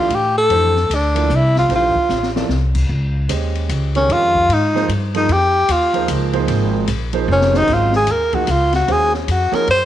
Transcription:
Already playing: F4
0.10 A2, ride
0.15 G4
0.38 A4
0.50 F2 E3 A3 D4 G4 C5, ride
0.76 snare
0.90 D2, hi-hat pedal, ride
0.95 D4
1.15 F3 A#3 E4 A4 D5, ride
1.30 C2, hi-hat pedal
1.36 E4
1.56 F4, snare
1.69 A#1 E3 A3 D4 G4 C5, snare, ride
1.75 F4
1.96 muted upright bass stroke, kick
2.09 A1, snare, hi-hat pedal
2.23 snare
2.36 F3 A#3 E4 A4 D5, snare
2.49 C2, snare
2.75 kick, crash
2.89 C#2
3.29 D#2 G#3 C#4 G4 C5 D#5, hi-hat pedal, ride
3.55 ride
3.69 C#2, hi-hat pedal, ride
3.95 D#3 G#3 C#4 G4 A#4, ride
4.09 F2 F4, ride
4.35 kick
4.49 G#2, ride
4.53 D#4
4.75 F3 A#3 D#4 G#4 C5, snare
4.88 G2, hi-hat pedal, ride
5.14 F3 A#3 D#4 G#4 D#5, ride
5.29 F2, ride
5.33 G4
5.69 D#2 F4, hi-hat pedal, ride
5.93 F3 A#3 D#4 G#4 C5, ride
6.08 C#2, hi-hat pedal, ride
6.33 F3 A#3 D#4 G#4 C5, ride
6.48 G#1, ride
6.88 A#1, hi-hat pedal, ride
7.13 F3 A#3 D#4 G#4 C5, ride
7.28 F1 C#4
7.41 snare
7.53 D#3 G#3 C#4 D#4 F#4 C5, snare
7.67 G#1 F#3 C4 F4 A#4 D#5, kick, crash
7.73 F4
7.93 G#4, snare
8.07 D#2, hi-hat pedal, ride
8.11 A#4
8.33 F3 A#3 D#4 F#4 G#4 A#4, kick, ride
8.47 C#2, hi-hat pedal, ride
8.52 F4
8.73 F#4, snare, ride
8.87 D#2 D#3 G#3 C#4 F#4 G#4 C5, ride
9.14 C#4, snare
9.28 F2 F#4, hi-hat pedal, ride
9.52 F3 A#3 D#4 G#4 A#4 C#5, muted upright bass stroke, snare, ride
9.67 F#2 C5, ride

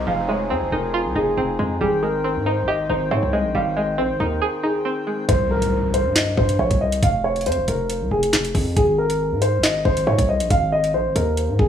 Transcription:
Already playing: C4 D#4, downlifter
0.07 F1 F3 G#4 F5
0.29 G#3 C#5
0.50 F2 C4 C5
0.62 F1
0.72 F1 D#4 A#4
0.94 F4
1.05 C2
1.16 F1 D#4 G#4
1.37 F1 C4
1.59 F2 G#3
1.81 G#1 D#3 G3 G#4 G5
2.03 G#3 A#4
2.24 C4
2.36 G#2
2.46 D#4 C5
2.63 G#1
2.68 G4 D#5
2.90 G#1 D#4 C5
3.11 G#2 C4 C#5
3.23 C2
3.33 G#3 D#5
3.45 A#1
3.55 G#1 G3 F5
3.77 G#3 D#5
3.98 A#1 C4 C5
4.10 G#1
4.20 D#2 D#4 A#4
4.42 G#4
4.63 D#4 G#4
4.85 C4
5.07 G#3
5.29 C2 C5, kick, closed hi-hat, impact
5.51 A#4
5.62 closed hi-hat
5.94 C5, closed hi-hat
6.05 G2
6.16 D#5, snare, clap, closed hi-hat
6.37 G2 C5, kick
6.49 closed hi-hat
6.59 A#1 C#5
6.71 C2, kick, closed hi-hat
6.81 D#5
6.92 closed hi-hat
7.03 F1 F5, kick, closed hi-hat
7.24 C#5
7.36 closed hi-hat
7.41 closed hi-hat
7.46 F2 C5, closed hi-hat
7.52 closed hi-hat
7.58 F1
7.68 F1 A#4, closed hi-hat
7.90 closed hi-hat
8.01 C2
8.11 F1 G#4
8.23 closed hi-hat
8.33 F1, snare, clap
8.45 closed hi-hat
8.55 F2, kick, open hi-hat
8.77 G#1 G#4, kick, closed hi-hat
8.98 A#4
9.10 closed hi-hat
9.32 G#2
9.42 C5, closed hi-hat
9.58 G#1
9.63 D#5, snare, clap, closed hi-hat
9.85 G#1 C5, kick
9.97 closed hi-hat
10.07 G#2 C#5
10.18 C2, kick, closed hi-hat
10.29 D#5
10.40 A#1, closed hi-hat
10.50 G#1 F5, kick, closed hi-hat
10.72 D#5
10.84 closed hi-hat
10.94 A#1 C5
11.05 G#1
11.16 D#2 A#4, closed hi-hat
11.37 closed hi-hat
11.49 G#2
11.59 G#1 G#4, kick

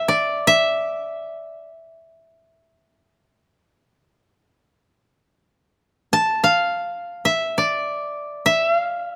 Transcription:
Already playing: E5
0.08 D5
0.47 E5
6.13 A5
6.44 F5
7.25 E5
7.58 D5
8.46 E5
8.73 F5

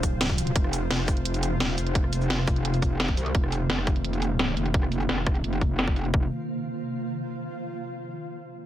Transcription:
Already playing: D#1 C3 F3 F4 C5 F5
0.03 kick, closed hi-hat, shaker
0.21 snare, closed hi-hat
0.29 kick
0.38 closed hi-hat, shaker
0.47 closed hi-hat
0.56 F1 D#3 A#3, kick, closed hi-hat
0.64 cross-stick
0.73 closed hi-hat, shaker
0.91 F1, snare, closed hi-hat
0.99 cross-stick
1.08 kick, cross-stick, closed hi-hat, shaker
1.17 closed hi-hat
1.25 closed hi-hat
1.34 closed hi-hat, shaker
1.43 closed hi-hat, shaker
1.52 E1
1.60 snare, closed hi-hat
1.78 F1, closed hi-hat, shaker
1.87 closed hi-hat
1.95 kick, closed hi-hat
2.04 cross-stick
2.13 closed hi-hat, shaker
2.21 shaker
2.30 snare, closed hi-hat
2.39 cross-stick
2.48 kick, closed hi-hat, shaker
2.56 closed hi-hat
2.65 closed hi-hat
2.74 closed hi-hat, shaker
2.82 kick, closed hi-hat, shaker
3.00 snare, closed hi-hat
3.09 kick
3.17 C2, closed hi-hat, shaker
3.26 closed hi-hat
3.35 F1, kick, closed hi-hat
3.44 cross-stick
3.52 closed hi-hat, shaker
3.70 F1, snare, closed hi-hat
3.78 cross-stick
3.87 kick, closed hi-hat, shaker
3.96 closed hi-hat
4.04 closed hi-hat
4.13 closed hi-hat, shaker
4.22 closed hi-hat, shaker
4.39 snare, closed hi-hat
4.57 F1, closed hi-hat, shaker
4.66 closed hi-hat
4.74 kick, closed hi-hat
4.83 cross-stick
4.92 closed hi-hat, shaker
5.00 shaker
5.09 F1, snare, closed hi-hat
5.18 cross-stick
5.27 kick, cross-stick, closed hi-hat, shaker
5.35 closed hi-hat
5.44 F1, closed hi-hat
5.53 closed hi-hat, shaker
5.61 kick, closed hi-hat, shaker
5.79 snare, closed hi-hat
5.88 kick
5.96 closed hi-hat, shaker
6.05 closed hi-hat
6.14 F1, kick

